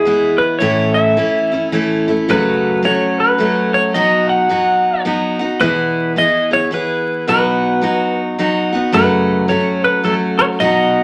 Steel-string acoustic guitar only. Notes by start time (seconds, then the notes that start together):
0.05 E3 G#3 B3 E4
0.60 A2 E3 A3 C#4 E4
1.17 E3 A3 C#4 E4
1.52 A3 C#4 E4
1.72 E3 A3 C#4 E4
2.08 A3 C#4 E4
2.28 F#2 C#3 F#3 A3 C#4 F#4
2.83 F#3 A3 C#4 F#4
3.38 F#3 A3 C#4 F#4
3.94 B2 F#3 B3 D#4 F#4
4.49 F#3 B3 D#4 F#4
5.05 F#3 B3 D#4 F#4
5.39 B3 D#4 F#4
5.60 E2 B2 E3 B3 E4 G#4
6.16 E3 B3 E4 G#4
6.51 E3 B3 E4 G#4
6.71 E3 B3 E4 G#4
7.27 B2 F#3 B3 D#4 F#4
7.82 F#3 B3 D#4 F#4
8.39 F#3 B3 D#4 F#4
8.72 B3 D#4 F#4
8.92 F#2 C#3 F#3 A3 C#4 F#4
9.48 F#3 A3 C#4 F#4
10.03 F#3 A3 C#4 F#4
10.60 B2 F#3 B3 D#4 F#4